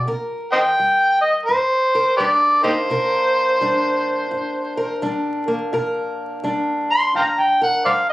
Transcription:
0.08 0.73 C3 medium
0.08 1.95 A#4 medium
0.52 0.59 C5 medium
0.52 0.61 D#5 medium
0.52 1.19 G5 loud
0.79 1.44 G3 medium
1.21 1.33 D#5 medium
1.46 2.14 G2 medium
1.46 2.14 C5 medium
1.95 2.91 A#4 medium
2.17 2.85 G3 medium
2.17 3.61 D4 medium
2.17 2.25 G4 medium
2.17 2.25 B4 medium
2.17 2.60 D5 medium
2.63 5.47 A#3 medium
2.63 2.72 D#4 medium
2.63 2.71 G4 medium
2.63 4.97 C5 medium
2.90 3.56 C3 medium
2.90 4.76 A#4 medium
3.61 4.27 G3 medium
3.61 5.02 D4 medium
4.31 4.97 G2 medium
4.77 5.70 A#4 medium
5.02 5.68 G3 medium
5.02 6.43 D4 medium
5.48 8.13 A#3 medium
5.73 6.38 C3 medium
5.73 7.61 A#4 medium
6.44 7.09 G3 medium
6.44 8.13 D4 medium
6.91 7.14 C6 loud
7.15 7.80 G2 medium
7.15 7.23 F5 medium
7.15 7.23 G5 medium
7.15 7.42 A#5 medium
7.40 7.62 G5 medium
7.62 8.13 A#4 medium
7.62 7.84 F#5 medium
7.85 8.13 G3 medium
7.85 7.94 C5 medium
7.85 7.91 D5 medium
7.85 8.08 F5 medium
8.10 8.13 D#5 medium

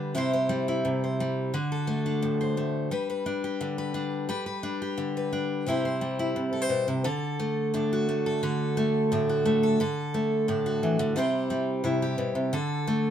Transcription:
0.00 0.15 D3 medium
0.00 0.14 G3 medium
0.00 0.13 D4 medium
0.00 0.13 G4 medium
0.00 0.13 B4 medium
0.15 0.84 C3 medium
0.15 0.48 G3 medium
0.15 0.67 E4 medium
0.15 1.52 G4 medium
0.15 0.32 C5 medium
0.33 1.02 C5 medium
0.49 1.19 G3 medium
0.68 1.52 E4 medium
0.85 1.52 C3 medium
1.04 1.52 C5 soft
1.20 1.54 G3 medium
1.54 2.91 D3 medium
1.54 2.90 F#4 medium
1.72 2.40 A4 medium
1.87 2.56 A3 medium
2.06 3.26 D4 medium
2.23 2.91 A2 medium
2.41 2.90 C5 medium
2.57 2.89 A3 medium
2.91 4.28 G3 medium
2.91 3.09 B4 medium
3.10 3.77 B4 medium
3.26 3.93 D4 medium
3.44 4.81 G4 medium
3.61 4.29 D3 medium
3.78 4.27 B4 medium
3.94 4.27 D4 medium
4.29 5.66 G3 medium
4.29 4.45 B4 medium
4.46 5.15 B4 medium
4.63 5.31 D4 medium
4.82 5.65 G4 medium
4.98 5.67 D3 medium
5.17 5.66 B4 medium
5.33 5.65 D4 medium
5.66 6.35 C3 medium
5.66 6.00 G3 medium
5.66 6.18 E4 medium
5.66 7.03 G4 medium
5.66 5.84 C5 medium
5.85 6.52 C5 medium
6.01 7.04 G3 medium
6.19 7.03 E4 medium
6.36 6.69 C3 medium
6.53 6.62 A4 medium
6.62 7.04 C5 soft
6.69 6.87 B2 medium
6.88 7.05 C3 medium
7.04 8.42 D3 medium
7.04 8.26 A4 medium
7.40 8.08 A3 medium
7.74 8.42 A2 medium
7.74 9.12 D4 medium
7.93 9.29 F#4 medium
8.09 8.77 A3 medium
8.26 8.43 A4 medium
8.43 9.79 D3 medium
8.43 9.62 A4 medium
8.77 9.44 A3 medium
9.12 9.80 A2 medium
9.12 9.78 D4 medium
9.29 9.78 F#4 medium
9.45 9.77 A3 medium
9.63 9.80 A4 medium
9.80 10.82 D3 medium
9.80 11.17 A4 medium
10.14 11.15 A3 medium
10.48 11.15 A2 medium
10.48 11.15 D4 medium
10.66 11.15 F#4 medium
10.83 10.99 E3 medium
10.99 11.16 D3 medium
11.16 11.82 C3 medium
11.16 11.49 G3 medium
11.16 11.83 E4 medium
11.16 12.01 G4 medium
11.16 12.52 C5 medium
11.50 12.53 G3 medium
11.84 12.18 C3 medium
11.84 12.51 E4 medium
12.02 12.51 G4 medium
12.18 12.35 B2 medium
12.35 12.53 C3 medium
12.53 13.10 D3 medium
12.53 13.10 A4 medium
12.87 13.10 A3 medium

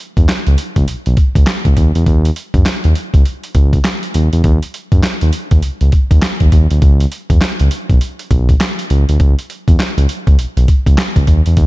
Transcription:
0.17 0.26 E2 medium
0.17 kick medium
0.17 closed hi-hat medium
0.29 snare medium
0.29 clap medium
0.29 closed hi-hat medium
0.47 0.56 C#2 medium
0.47 closed hi-hat soft
0.58 closed hi-hat medium
0.76 0.86 C#2 medium
0.76 kick medium
0.76 closed hi-hat soft
0.88 0.95 B1 soft
0.88 closed hi-hat medium
1.06 1.16 B1 medium
1.06 closed hi-hat soft
1.17 kick medium
1.17 closed hi-hat medium
1.35 1.45 C#2 medium
1.35 kick medium
1.35 closed hi-hat medium
1.46 snare loud
1.46 clap medium
1.46 closed hi-hat medium
1.65 1.75 C#2 loud
1.65 kick medium
1.65 closed hi-hat medium
1.77 1.92 D#2 loud
1.77 kick medium
1.77 closed hi-hat medium
1.95 2.04 E2 medium
1.95 closed hi-hat soft
2.06 2.30 D#2 loud
2.06 kick loud
2.06 closed hi-hat medium
2.25 closed hi-hat medium
2.36 closed hi-hat medium
2.54 2.64 F#2 medium
2.54 kick loud
2.54 closed hi-hat medium
2.66 snare loud
2.66 clap medium
2.66 closed hi-hat medium
2.84 2.94 D#2 medium
2.84 closed hi-hat soft
2.95 closed hi-hat medium
3.14 3.23 C#2 medium
3.14 kick medium
3.14 closed hi-hat soft
3.26 closed hi-hat medium
3.43 closed hi-hat soft
3.55 3.79 C#2 medium
3.55 kick medium
3.55 closed hi-hat medium
3.73 kick medium
3.73 closed hi-hat medium
3.84 snare loud
3.84 clap medium
3.84 closed hi-hat medium
4.03 closed hi-hat medium
4.14 4.29 D#2 medium
4.14 closed hi-hat medium
4.33 4.42 E2 medium
4.33 closed hi-hat soft
4.44 4.59 D#2 loud
4.44 kick loud
4.44 closed hi-hat medium
4.62 closed hi-hat medium
4.74 closed hi-hat medium
4.92 5.01 F#2 medium
4.92 kick medium
4.92 closed hi-hat medium
5.03 snare loud
5.03 clap medium
5.03 closed hi-hat medium
5.21 5.31 D#2 medium
5.21 closed hi-hat soft
5.33 closed hi-hat medium
5.51 5.61 D#2 medium
5.51 kick medium
5.51 closed hi-hat soft
5.62 5.70 C#2 soft
5.62 closed hi-hat medium
5.81 5.90 C#2 medium
5.81 closed hi-hat soft
5.92 kick medium
5.92 closed hi-hat medium
6.11 6.20 D#2 medium
6.11 kick medium
6.11 closed hi-hat medium
6.22 snare loud
6.22 clap medium
6.22 closed hi-hat medium
6.40 6.50 D#2 medium
6.40 kick medium
6.40 closed hi-hat medium
6.52 6.67 D#2 loud
6.52 kick medium
6.52 closed hi-hat medium
6.71 6.80 D2 medium
6.71 closed hi-hat soft
6.82 7.06 C#2 loud
6.82 kick loud
6.82 closed hi-hat medium
7.00 closed hi-hat soft
7.12 closed hi-hat medium
7.30 7.39 E2 medium
7.30 kick loud
7.30 closed hi-hat medium
7.41 snare loud
7.41 clap medium
7.41 closed hi-hat medium
7.59 7.69 C#2 medium
7.59 closed hi-hat soft
7.71 closed hi-hat medium
7.90 7.99 B1 medium
7.90 kick medium
7.90 closed hi-hat soft
8.01 closed hi-hat medium
8.19 closed hi-hat soft
8.31 8.54 B1 medium
8.31 kick medium
8.31 closed hi-hat medium
8.49 kick medium
8.49 closed hi-hat medium
8.60 snare loud
8.60 clap medium
8.60 closed hi-hat medium
8.79 closed hi-hat medium
8.90 9.05 C#2 loud
8.90 closed hi-hat medium
9.09 9.18 D2 medium
9.09 closed hi-hat soft
9.20 9.35 C#2 loud
9.20 kick loud
9.20 closed hi-hat medium
9.39 closed hi-hat medium
9.50 closed hi-hat medium
9.68 9.77 E2 medium
9.68 kick loud
9.68 closed hi-hat medium
9.80 snare medium
9.80 clap medium
9.80 closed hi-hat medium
9.98 10.07 C#2 medium
9.98 closed hi-hat soft
10.09 closed hi-hat medium
10.27 10.36 C#2 medium
10.27 kick medium
10.27 closed hi-hat soft
10.39 10.46 B1 soft
10.39 closed hi-hat medium
10.57 10.66 B1 medium
10.57 closed hi-hat soft
10.68 kick medium
10.68 closed hi-hat medium
10.86 10.96 C#2 medium
10.86 kick medium
10.86 closed hi-hat medium
10.98 snare loud
10.98 clap medium
10.98 closed hi-hat medium
11.16 11.25 C#2 medium
11.16 kick medium
11.16 closed hi-hat medium
11.27 11.42 D#2 medium
11.27 kick medium
11.27 closed hi-hat medium
11.46 11.55 E2 medium
11.46 closed hi-hat soft
11.57 11.67 D#2 loud
11.57 kick loud
11.57 closed hi-hat medium

